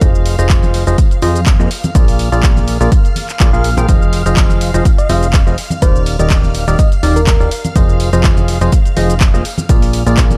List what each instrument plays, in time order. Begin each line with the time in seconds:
Already playing: string machine F5 F6
0.01 analog synth bass F1, synth stab F3 F4 G#4 C5 D#5, kick, closed hi-hat, tambourine, shaker
0.15 shaker
0.26 open hi-hat, tambourine
0.39 analog synth bass F1, synth stab F3 F4 G#4 C5 D#5, closed hi-hat, tambourine, shaker
0.49 kick, clap, closed hi-hat, tambourine, shaker
0.62 tambourine, high conga, shaker
0.74 open hi-hat, tambourine
0.86 analog synth bass F1, synth stab F3 F4 G#4 C5 D#5, closed hi-hat, tambourine, shaker
0.98 kick, closed hi-hat, tambourine, shaker
1.11 closed hi-hat, shaker
1.22 analog synth bass F2, synth stab F3 F4 G#4 C5 D#5, open hi-hat, tambourine, high conga
1.35 closed hi-hat, tambourine, shaker
1.46 kick, clap, closed hi-hat, tambourine, shaker
1.60 analog synth bass F2, synth stab A#3 F4 G#4 C5 D#5, shaker
1.71 open hi-hat, tambourine
1.83 closed hi-hat, tambourine, high conga, shaker
1.95 analog synth bass A#1, synth stab A#3 F4 G#4 A#4 D5, kick, closed hi-hat, tambourine, shaker
2.08 open hi-hat, shaker
2.19 open hi-hat, tambourine
2.32 analog synth bass A#1, synth stab A#3 F4 G#4 A#4 D5, closed hi-hat, tambourine, shaker
2.43 kick, clap, closed hi-hat, tambourine, shaker
2.57 tambourine, high conga, shaker
2.68 open hi-hat, tambourine
2.81 analog synth bass A#1, synth stab A#3 F4 G#4 A#4 D5, closed hi-hat, tambourine, shaker
2.92 kick, closed hi-hat, tambourine, shaker
3.05 closed hi-hat, shaker
3.16 open hi-hat, tambourine, high conga
3.29 clap, closed hi-hat, tambourine, shaker
3.39 analog synth bass A#1, synth stab A#3 F4 G#4 A#4 D5, kick, clap, closed hi-hat, tambourine, shaker
3.53 analog synth bass A#1, synth stab A#3 F4 G#4 A#4 F5, shaker
3.64 open hi-hat, tambourine
3.77 analog synth bass A#1, synth stab F3 F4 G#4 A#4 G5, closed hi-hat, tambourine, high conga, shaker
3.88 analog synth bass F1, synth stab F3 F4 G#4 C5 D#5, kick, closed hi-hat, tambourine, shaker
4.02 shaker
4.13 closed hi-hat, open hi-hat, tambourine
4.26 analog synth bass F1, synth stab F3 F4 G#4 C5 D#5, closed hi-hat, tambourine, shaker
4.37 kick, snare, clap, closed hi-hat, tambourine, shaker
4.49 closed hi-hat, tambourine, high conga, shaker
4.61 closed hi-hat, open hi-hat, tambourine
4.74 analog synth bass F1, synth stab F3 F4 G#4 C5 D#5, closed hi-hat, tambourine, shaker
4.85 kick, closed hi-hat, tambourine, shaker
4.98 soft synth lead D#5, closed hi-hat, shaker
5.09 analog synth bass F1, synth stab F3 F4 G#4 C5 D#5, soft synth lead F5, closed hi-hat, open hi-hat, tambourine, high conga
5.23 snare, closed hi-hat, tambourine, shaker
5.33 kick, snare, clap, closed hi-hat, tambourine, shaker
5.47 analog synth bass F1, synth stab F3 F4 G#4 C5 D#5, snare, shaker
5.58 snare, closed hi-hat, open hi-hat, tambourine
5.70 closed hi-hat, tambourine, high conga, shaker
5.82 analog synth bass D#1, synth stab D#3 D#4 G4 A#4 D5, soft synth lead C5, kick, closed hi-hat, tambourine, shaker
5.96 shaker
6.06 closed hi-hat, open hi-hat, tambourine
6.19 analog synth bass D#1, synth stab D#3 D#4 G4 A#4 D5, soft synth lead D#5, closed hi-hat, tambourine, shaker
6.30 kick, snare, clap, closed hi-hat, tambourine, shaker
6.43 tambourine, high conga, shaker
6.54 closed hi-hat, open hi-hat, tambourine
6.67 analog synth bass D#1, synth stab D#3 D#4 G4 A#4 D5, soft synth lead D#5, closed hi-hat, tambourine, shaker
6.78 soft synth lead D#5, kick, closed hi-hat, tambourine, shaker
6.92 closed hi-hat, shaker
7.03 analog synth bass D#1, synth stab D#3 D#4 G4 A#4 D5, closed hi-hat, open hi-hat, tambourine, high conga
7.16 soft synth lead A#4, closed hi-hat, tambourine, shaker
7.27 kick, snare, clap, closed hi-hat, tambourine, shaker
7.40 analog synth bass D#1, synth stab D#3 D#4 G4 A#4 D5, snare, shaker
7.51 open hi-hat, tambourine
7.64 closed hi-hat, tambourine, high conga, shaker
7.76 analog synth bass F1, synth stab F3 F4 G#4 C5 D#5, kick, closed hi-hat, tambourine, shaker
7.89 shaker
8.00 closed hi-hat, open hi-hat, tambourine
8.13 analog synth bass F1, synth stab F3 F4 G#4 C5 D#5, closed hi-hat, tambourine, shaker
8.24 kick, snare, clap, closed hi-hat, tambourine, shaker
8.37 closed hi-hat, tambourine, high conga, shaker
8.48 closed hi-hat, open hi-hat, tambourine
8.61 analog synth bass F1, synth stab F3 F4 G#4 C5 D#5, closed hi-hat, tambourine, shaker
8.72 kick, closed hi-hat, tambourine, shaker
8.86 closed hi-hat, shaker
8.96 analog synth bass F1, synth stab F3 F4 G#4 C5 D#5, closed hi-hat, open hi-hat, tambourine, high conga
9.09 snare, closed hi-hat, tambourine, shaker
9.20 kick, snare, clap, closed hi-hat, tambourine, shaker
9.34 analog synth bass F1, synth stab A#3 F4 G#4 C5 D#5, snare, shaker
9.45 snare, closed hi-hat, open hi-hat, tambourine
9.58 closed hi-hat, tambourine, high conga, shaker
9.69 analog synth bass A#1, synth stab A#3 F4 G#4 A#4 D5, kick, closed hi-hat, tambourine, shaker
9.82 open hi-hat, tambourine, shaker
9.93 closed hi-hat, open hi-hat, tambourine
10.06 analog synth bass A#1, synth stab A#3 F4 G#4 A#4 D5, closed hi-hat, tambourine, shaker
10.17 kick, snare, clap, closed hi-hat, tambourine, shaker
10.30 closed hi-hat, tambourine, high conga, shaker